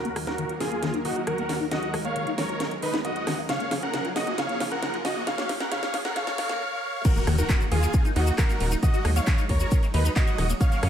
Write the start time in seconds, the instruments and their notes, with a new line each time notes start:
Already playing: supersaw synth D#2 D#3 F#3 A#3 F#4 A#4, grand piano A#4, riser
0.05 acid bass A#3, closed hi-hat
0.16 acid bass D#3, cross-stick, open hi-hat
0.27 acid bass D#4, supersaw synth F#4 A#4, grand piano A#4, snare, closed hi-hat
0.38 acid bass D#3, closed hi-hat
0.49 acid bass F#4, closed hi-hat
0.60 acid bass D#3, supersaw synth F4 G#4, grand piano G#4, snare, open hi-hat
0.72 acid bass A#3, closed hi-hat
0.83 acid bass D#3, snare, closed hi-hat
0.94 acid bass D#4, closed hi-hat
1.05 acid bass D#3, supersaw synth D#4 F#4, grand piano F#4, open hi-hat
1.16 acid bass F#4, closed hi-hat
1.27 acid bass D#3, supersaw synth F#4 A#4, grand piano A#4, cross-stick, closed hi-hat
1.38 acid bass A#3, closed hi-hat
1.49 acid bass D#3, snare, open hi-hat
1.61 acid bass D#4
1.71 acid bass D#3, supersaw synth G#3 F#4 D#5, grand piano D#5, snare, closed hi-hat
1.83 acid bass F#4, closed hi-hat
1.94 acid bass D#3, cross-stick, open hi-hat
2.05 acid bass A#3, supersaw synth C#5 F5, grand piano F5, closed hi-hat
2.16 acid bass D#3, closed hi-hat
2.27 acid bass D#4, closed hi-hat
2.38 acid bass D#3, supersaw synth A#4 C#5, grand piano C#5, snare, open hi-hat
2.49 acid bass F#4, closed hi-hat
2.60 acid bass D#3, snare, closed hi-hat
2.71 acid bass A#3, closed hi-hat
2.82 acid bass D#3, supersaw synth D#4 B4, grand piano B4, open hi-hat
2.94 acid bass D#4, snare, closed hi-hat
3.05 acid bass D#3, supersaw synth F#4 D#5, grand piano D#5, closed hi-hat
3.16 acid bass F#4, closed hi-hat
3.27 acid bass D#3, cross-stick, snare, open hi-hat
3.38 acid bass A#3
3.49 supersaw synth F#2 C#3 F3 A#3 G#4 C#5 F5, acid bass C#3, grand piano F5, snare, closed hi-hat
3.60 acid bass A#3, closed hi-hat
3.71 acid bass C#3, snare, open hi-hat
3.82 acid bass C#4, supersaw synth A#4 F#5, grand piano F#5, closed hi-hat
3.94 acid bass C#3, snare, closed hi-hat
4.05 acid bass F4, closed hi-hat
4.16 acid bass C#3, supersaw synth F#4 D#5, grand piano D#5, snare, open hi-hat
4.27 acid bass A#3, closed hi-hat
4.38 acid bass C#3, supersaw synth C#5 F5, grand piano F5, snare, closed hi-hat
4.49 acid bass A#3, closed hi-hat
4.60 acid bass C#3, snare, open hi-hat
4.71 acid bass C#4, supersaw synth A#4 F#5, grand piano F#5, closed hi-hat
4.83 acid bass C#3, snare, closed hi-hat
4.94 acid bass F4, closed hi-hat
5.05 acid bass C#3, supersaw synth F#4 D#5, grand piano D#5, snare, open hi-hat
5.16 acid bass A#3
5.27 acid bass C#3, supersaw synth C#5 F5, grand piano F5, snare, closed hi-hat
5.38 acid bass A#3, snare, closed hi-hat
5.49 acid bass C#3, snare, open hi-hat
5.60 acid bass C#4, supersaw synth A#4 F#5, grand piano F#5, snare, closed hi-hat
5.72 acid bass C#3, supersaw synth C#5 F5, grand piano F5, snare, closed hi-hat
5.83 acid bass A#3, snare, closed hi-hat
5.94 acid bass C#3, snare, open hi-hat
6.05 acid bass C#4, supersaw synth A#4 F#5, grand piano F#5, snare, closed hi-hat
6.16 acid bass C#3, supersaw synth C#5 F5, grand piano F5, snare, closed hi-hat
6.27 acid bass A#3, snare, closed hi-hat
6.38 acid bass C#3, supersaw synth C#5 F5, grand piano F5, snare, open hi-hat
6.49 acid bass A#3, snare, closed hi-hat
6.61 supersaw synth C#5 F5
6.83 supersaw synth C#5 F5
7.05 acid bass D#3, supersaw synth F#3 A#3 D#4 F#4 A#4, grand piano A#4, kick, closed hi-hat, crash, ride, impact, shaker
7.16 acid bass A#3, closed hi-hat, shaker
7.27 analog synth bass D#2, acid bass D#3, cross-stick, open hi-hat, ride
7.38 acid bass D#4, supersaw synth F#4 A#4, grand piano A#4, closed hi-hat, shaker
7.49 acid bass D#3, kick, clap, closed hi-hat, ride, shaker
7.60 acid bass F#4, closed hi-hat, shaker
7.71 analog synth bass D#2, acid bass D#3, supersaw synth F4 G#4, grand piano G#4, open hi-hat, ride
7.83 acid bass A#3, shaker
7.94 acid bass D#3, kick, closed hi-hat, ride, shaker
8.05 acid bass D#4, closed hi-hat, shaker
8.16 analog synth bass D#2, acid bass D#3, supersaw synth D#4 F#4, grand piano F#4, open hi-hat, ride
8.27 acid bass F#4, closed hi-hat, shaker
8.38 acid bass D#3, supersaw synth F#4 A#4, grand piano A#4, kick, cross-stick, clap, closed hi-hat, ride, shaker
8.49 acid bass A#3, closed hi-hat, shaker
8.60 analog synth bass D#1, acid bass D#3, open hi-hat, ride
8.71 acid bass D#4, shaker
8.83 acid bass D#3, supersaw synth G#3 F#4 D#5, grand piano D#5, kick, closed hi-hat, ride, shaker
8.94 acid bass F#4, closed hi-hat, shaker
9.05 analog synth bass D#2, acid bass D#3, cross-stick, open hi-hat, ride
9.16 acid bass A#3, supersaw synth C#5 F5, grand piano F5, closed hi-hat, shaker
9.27 acid bass D#3, kick, clap, closed hi-hat, ride, shaker
9.38 acid bass D#4, closed hi-hat, shaker
9.49 analog synth bass D#2, acid bass D#3, supersaw synth A#4 C#5, grand piano C#5, kick, open hi-hat, ride
9.60 acid bass F#4, closed hi-hat, shaker
9.71 acid bass D#3, kick, closed hi-hat, ride, shaker
9.83 acid bass A#3, closed hi-hat, shaker
9.94 analog synth bass D#2, acid bass D#3, supersaw synth D#4 B4, grand piano B4, open hi-hat, ride
10.05 acid bass D#4, closed hi-hat, shaker
10.16 acid bass D#3, supersaw synth F#4 D#5, grand piano D#5, kick, clap, closed hi-hat, ride, shaker
10.27 acid bass F#4, closed hi-hat, shaker
10.38 analog synth bass D#1, acid bass D#3, cross-stick, open hi-hat, ride
10.49 acid bass A#3, closed hi-hat, shaker
10.61 acid bass C#3, supersaw synth C#4 F#4 G#4 A#4 C#5 F5, grand piano F5, kick, closed hi-hat, ride, shaker
10.72 acid bass A#3, closed hi-hat, shaker
10.83 analog synth bass F#2, acid bass C#3, cross-stick, open hi-hat, ride